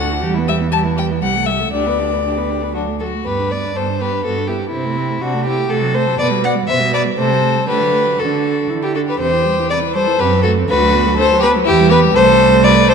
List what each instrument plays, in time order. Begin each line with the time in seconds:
Already playing: cello D2, violin A4 F#5
0.00 viola F#4
0.10 viola D4, violin F#4
0.21 cello E2, violin G4
0.25 viola G3
0.34 viola B3, violin E4
0.47 viola G3, violin G4 E5
0.60 viola B3, violin E4
0.71 viola G3, violin G4 A5
0.83 viola B3, violin E4
0.96 viola G3, violin G4 G5
1.10 viola B3, violin E4
1.22 cello C2, viola G3, violin G4 F#5
1.35 viola A3, violin A4
1.46 viola G3, violin G4 E5
1.60 viola A3, violin A4
1.73 cello D2, viola D4, violin G4 D5
1.86 viola B3, violin B4
1.98 viola D4, violin G4
2.12 viola B3, violin B4
2.24 viola D4, violin G4
2.37 viola B3, violin B4
2.49 viola D4, violin G4
2.62 viola B3, violin B4
2.74 viola F#3, violin D4 F#4
2.88 viola A3
3.00 viola F#3, violin F#4 A4
3.14 viola A3
3.25 cello G2, viola B3, violin G4 B4
3.39 viola D4
3.50 viola B3, violin B4 D5
3.65 viola D4
3.75 cello G2, viola B3, violin A4 C5
3.89 viola D4
4.01 viola B3, violin G4 B4
4.12 viola D4
4.25 cello G2, viola B3, violin F#4 A4
4.38 viola D4
4.47 viola B3, violin E4 G4
4.61 viola D4
4.70 cello C3, viola C4, violin E4
4.74 violin C4
4.85 viola A3
4.97 viola C4
5.10 viola A3
5.22 cello C3, viola C4, violin D4 F#4
5.34 viola A3
5.46 viola C4, violin E4 G4
5.58 viola A3
5.70 cello C3, viola A3, violin F#4 A4
5.82 viola F#3
5.94 viola A3, violin A4 C5
6.06 viola F#3
6.18 cello B2, viola B3, violin B4 D5
6.30 viola G3
6.43 viola B3, violin D5 F#5
6.55 viola G3
6.68 cello B2, viola B3, violin C5 E5
6.80 viola G3
6.92 viola B3, violin B4 D5
7.05 viola G3
7.16 cello C3, viola A3, violin A4 C5
7.30 viola G3
7.42 viola A3
7.56 viola G3
7.68 cello D3, viola A3, violin G4 B4
7.81 viola F#3
7.93 viola A3
8.06 viola F#3
8.18 cello D3, viola D4, violin F#4 A4
8.69 cello D3, viola E4
8.82 violin E4 G4
8.95 viola D4, violin F#4 A4
9.07 violin G4 B4
9.20 cello E2, viola C3, violin G4 C5
9.33 viola E3
9.45 viola G3
9.58 viola E3
9.70 viola C3, violin B4 D5
9.82 viola E3
9.94 viola G3, violin A4 C5
10.07 viola E3
10.19 cello F#2, viola C3, violin G4 B4
10.32 viola F#3
10.43 viola A3, violin F#4 A4
10.58 viola C4
10.68 cello D2, viola D3, violin F#4 B4
10.81 viola F#3
10.93 viola B3
11.07 viola F#3
11.16 viola D3, violin A4 C5
11.32 viola F#3
11.39 violin G4 B4
11.44 viola B3
11.56 viola F#3
11.65 cello E2, viola E3, violin E4 G4
11.79 viola G3
11.90 viola B3, violin G4 B4
12.04 viola G3
12.14 cello C2, viola A3, violin A4 C5
12.64 violin B4 D5
12.89 violin A4 C5